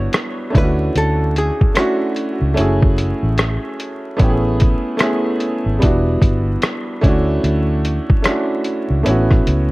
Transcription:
Already playing: upright piano G3 B3 D4 E4 F#4, hollow-body jazz guitar C#5
0.13 cross-stick, closed hi-hat
0.50 upright piano A3 C#4 D4
0.55 fingered electric bass D2, upright piano E4 F4, hollow-body jazz guitar B4, kick, closed hi-hat
0.63 upright piano F#4
0.95 fingered electric bass D2, hollow-body jazz guitar A4, closed hi-hat
1.36 hollow-body jazz guitar G#4, closed hi-hat
1.61 kick
1.74 upright piano A3 C#4 D4, cross-stick, closed hi-hat
1.79 upright piano E4 F#4, hollow-body jazz guitar F#4
2.16 closed hi-hat
2.41 fingered electric bass C#2
2.54 fingered electric bass F#1, upright piano A3 C#4 E4, closed hi-hat
2.59 upright piano F#4 G#4
2.83 kick
2.98 closed hi-hat
3.23 fingered electric bass A1
3.38 cross-stick, closed hi-hat
3.80 closed hi-hat
4.16 fingered electric bass A1, upright piano A3 B3 C#4, kick, closed hi-hat
4.21 upright piano E4 G4
4.29 upright piano G#4
4.60 kick, closed hi-hat
4.97 upright piano A3 B3 C#4, cross-stick, closed hi-hat
5.02 upright piano E4 G#4
5.40 closed hi-hat
5.66 fingered electric bass G#1
5.79 upright piano G3 B3 D4, closed hi-hat
5.83 fingered electric bass E1, upright piano E4 F#4, kick
6.22 fingered electric bass G1, kick, closed hi-hat
6.62 cross-stick, closed hi-hat
7.01 fingered electric bass D2, upright piano A3 C#4 D4, kick, closed hi-hat
7.06 upright piano E4 F#4
7.44 fingered electric bass D2, closed hi-hat
7.85 closed hi-hat
8.10 kick
8.22 upright piano A3 C#4 D4, cross-stick, closed hi-hat
8.27 upright piano E4 F#4
8.64 closed hi-hat
8.90 fingered electric bass C#2
9.03 fingered electric bass A1, upright piano A3 B3 C#4, closed hi-hat
9.08 upright piano E4 F#4
9.31 kick, cross-stick
9.47 fingered electric bass C#2, closed hi-hat

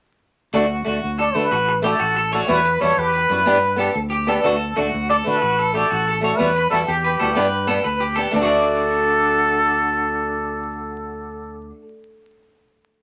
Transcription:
0.54 fingered electric bass D2, steel-string acoustic guitar A3 D4 F#4, clean electric guitar F#4
0.85 fingered electric bass D2, steel-string acoustic guitar A3 D4 F#4, clean electric guitar F#4
1.04 fingered electric bass D2
1.19 clean electric guitar A4, muted trumpet D5
1.34 fingered electric bass D3, steel-string acoustic guitar A3 D4 F#4, muted trumpet B4
1.51 fingered electric bass A1, clean electric guitar F#4
1.68 muted clean electric guitar stroke
1.82 steel-string acoustic guitar A3 D4 F#4, clean electric guitar G4, muted trumpet A4
2.00 fingered electric bass A1, clean electric guitar F#4
2.17 clean electric guitar A4
2.32 steel-string acoustic guitar A3 D4 F#4, muted trumpet A4, clean electric guitar C#5
2.47 fingered electric bass E2, steel-string acoustic guitar G3 B3 E4 F#4, muted trumpet B4
2.65 clean electric guitar B4
2.80 fingered electric bass E2, steel-string acoustic guitar G3 B3 E4 F#4, clean electric guitar A4, muted trumpet C#5
2.97 fingered electric bass E2, clean electric guitar G4, muted trumpet B4
3.14 clean electric guitar B4
3.29 fingered electric bass F#2, steel-string acoustic guitar G3 B3 E4 F#4, clean electric guitar B4
3.45 fingered electric bass G2, steel-string acoustic guitar B3 D4 G4, clean electric guitar B4
3.76 steel-string acoustic guitar B3 D4 G4, clean electric guitar A4
3.95 fingered electric bass D2
4.10 clean electric guitar G4
4.27 steel-string acoustic guitar B3 D4 G4, clean electric guitar A4
4.43 fingered electric bass D2, steel-string acoustic guitar A3 D4 F#4, clean electric guitar A4
4.76 fingered electric bass D2, steel-string acoustic guitar A3 D4 F#4, clean electric guitar F#4
4.94 fingered electric bass D2
5.09 clean electric guitar A4, muted trumpet D5
5.24 fingered electric bass D3, steel-string acoustic guitar A3 D4 F#4, muted trumpet B4
5.42 fingered electric bass A1, clean electric guitar F#4
5.59 clean electric guitar A4
5.72 steel-string acoustic guitar A3 D4, clean electric guitar G4, muted trumpet A4
5.77 steel-string acoustic guitar F#4
5.90 fingered electric bass A1, clean electric guitar F#4
6.08 clean electric guitar A4
6.21 steel-string acoustic guitar A3 D4 F#4, muted trumpet A4, clean electric guitar C#5
6.36 fingered electric bass E2, steel-string acoustic guitar G3 B3 E4 F#4, muted trumpet B4
6.56 clean electric guitar B4
6.70 fingered electric bass E2, steel-string acoustic guitar G3 B3 E4 F#4, muted trumpet A4, clean electric guitar A4
6.87 fingered electric bass E2, muted trumpet G4, clean electric guitar G4
7.04 clean electric guitar B4
7.19 fingered electric bass D2, steel-string acoustic guitar G3 B3 E4 F#4, clean electric guitar A4
7.35 fingered electric bass G2, steel-string acoustic guitar B3 D4 G4, clean electric guitar B4
7.67 steel-string acoustic guitar B3 D4 G4, clean electric guitar A4
7.84 fingered electric bass D2, clean electric guitar B4
8.00 clean electric guitar G4
8.16 steel-string acoustic guitar B3 D4 G4, clean electric guitar A4
8.31 fingered electric bass D2, steel-string acoustic guitar A3, clean electric guitar D4, muted trumpet A4
8.36 steel-string acoustic guitar D4, clean electric guitar F#4
8.41 steel-string acoustic guitar F#4, clean electric guitar A4
8.45 clean electric guitar D5

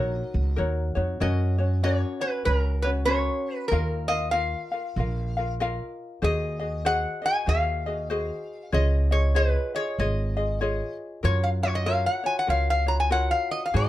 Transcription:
Already playing: upright bass A#1, ukulele D#4 F#4 A#4 C#5, resonator guitar played with a steel bar D#5
0.34 upright bass C#2
0.56 upright bass D#2, ukulele D#4 F#4 A#4 C#5
0.95 upright bass F2, ukulele D#4 F#4 C#5
1.20 upright bass F#2, ukulele C#4 F#4 A#4 C#5, resonator guitar played with a steel bar D#5
1.58 ukulele C#4 F#4 C#5
1.83 ukulele C#4 F#4 A#4 C#5, resonator guitar played with a steel bar C#5
2.21 ukulele C#4 F#4 C#5, resonator guitar played with a steel bar B4
2.44 upright bass C#2, ukulele C#4 F#4 A#4 C#5, resonator guitar played with a steel bar A#4
2.82 ukulele F#4 C#5, resonator guitar played with a steel bar B4
2.87 ukulele C#4
3.05 ukulele C#4 F#4 A#4 C#5, resonator guitar played with a steel bar C#5
3.55 resonator guitar played with a steel bar B4
3.68 upright bass D#2, ukulele F4 A#4 D#5, resonator guitar played with a steel bar A#4
3.73 ukulele F5
4.08 ukulele F4 A#4 F5, resonator guitar played with a steel bar D#5
4.31 ukulele F4 A#4 D#5 F5, resonator guitar played with a steel bar F5
4.72 ukulele F4 A#4 F5
4.96 upright bass A#1, ukulele F4 A#4 D#5 F5
5.37 ukulele F4 A#4 F5
5.60 ukulele F4 A#4 D#5 F5
6.22 upright bass D#2, ukulele F#4 G#4 C5 D#5, resonator guitar played with a steel bar D#5
6.59 ukulele F#4 G#4 D#5
6.85 ukulele F#4 G#4 C5 D#5, resonator guitar played with a steel bar F#5
7.22 ukulele F#4 G#4 D#5, resonator guitar played with a steel bar G#5
7.46 upright bass D#2, ukulele F#4 G#4 C5 D#5, resonator guitar played with a steel bar F5
7.86 ukulele F#4 G#4 D#5
8.10 ukulele F#4 G#4 C5 D#5
8.72 upright bass C#2, ukulele F4 G#4 C#5 D#5, resonator guitar played with a steel bar D#5
9.11 ukulele F4 G#4 D#5, resonator guitar played with a steel bar C#5
9.35 ukulele F4 G#4 C#5 D#5, resonator guitar played with a steel bar B4
9.75 ukulele F4 G#4 D#5, resonator guitar played with a steel bar C#5
9.99 upright bass G#1, ukulele F4 G#4 C#5 D#5, resonator guitar played with a steel bar D#5
10.37 ukulele F4 G#4 D#5
10.61 ukulele F4 G#4 C#5 D#5
11.23 upright bass F#2, ukulele F4 F#4 A#4 C#5, resonator guitar played with a steel bar C#5
11.44 resonator guitar played with a steel bar F5
11.63 ukulele F4 F#4 C#5, resonator guitar played with a steel bar C#5
11.75 resonator guitar played with a steel bar D#5
11.86 ukulele F4 F#4 A#4 C#5, resonator guitar played with a steel bar F5
12.06 resonator guitar played with a steel bar F#5
12.24 ukulele F4 F#4 C#5, resonator guitar played with a steel bar G#5
12.39 resonator guitar played with a steel bar F#5
12.47 upright bass C#2, ukulele F4 F#4 A#4 C#5, resonator guitar played with a steel bar F5
12.70 resonator guitar played with a steel bar F5
12.86 ukulele F4 F#4 C#5, resonator guitar played with a steel bar A#5
13.00 resonator guitar played with a steel bar G#5
13.10 ukulele F4 F#4 A#4 C#5, resonator guitar played with a steel bar F#5
13.31 resonator guitar played with a steel bar F5
13.51 resonator guitar played with a steel bar D#5
13.66 resonator guitar played with a steel bar F5
13.74 upright bass G#2, ukulele D#4 F#4 G#4 C5, resonator guitar played with a steel bar D#5

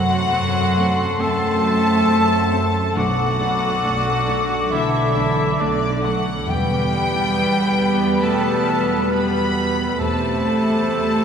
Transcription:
Already playing: double bass section F#2, harp F#2 C3 A3 C4 A4 C5, cello section F#3, french horn section C4 A4, cor anglais F#4, clarinet A4, violin section F#5, flute C6
0.12 harp A4
0.33 double bass section F#2, viola section A3 C4, harp C5
0.56 harp A4
0.77 viola section A3 C4, harp C5
1.00 harp C4
1.20 double bass section F#2, viola section A3 C4, cello section A3, cor anglais A4, violin section A5
1.43 harp A3
1.64 viola section A3 C4, harp C5
1.88 harp A4
2.08 double bass section F#2, viola section A3 C4, harp C5
2.52 viola section A3 C4, harp C5
2.75 harp C4
2.96 double bass section B1, timpani B2, harp B2, cello section F#3, viola section A3 D4, french horn section D4 A4, cor anglais F#4, clarinet A4, violin section F#5, flute D6
3.19 harp A3
3.40 viola section A3 D4, harp B5
3.64 harp A4
3.84 double bass section B1, viola section A3 D4, harp D5
4.07 harp A4
4.28 viola section A3 D4
4.51 harp D4
4.72 double bass section B1, harp D3, cello section E3, viola section A3 D4, cor anglais E4, violin section E5
4.95 harp A3
5.15 viola section A3 D4
5.39 harp A4
5.59 double bass section B1, cello section D3, viola section A3 D4, cor anglais D4, violin section D5, harp D5
5.84 harp A4
6.03 cello section F#3, viola section A3 D4, cor anglais F#4, violin section F#5
6.27 harp D4
6.47 timpani E2, double bass section E2, harp E2, cello section G3, viola section G3 B3, french horn section B3 B4, cor anglais G4, clarinet B4, violin section G5, flute B5
6.70 harp G3
7.13 harp E4
8.23 harp B2, cello section A3, cor anglais A4, violin section A5
8.46 harp F#3
8.91 harp F#4
9.11 cello section B3, cor anglais B4, violin section B5
9.35 harp F#4
10.00 double bass section E2, timpani E2, harp E2, viola section C3 A3, cello section A3, french horn section A3 A4, cor anglais A4, clarinet C5, violin section A5, flute B5
10.23 harp A3
10.66 harp A4
10.88 harp C5

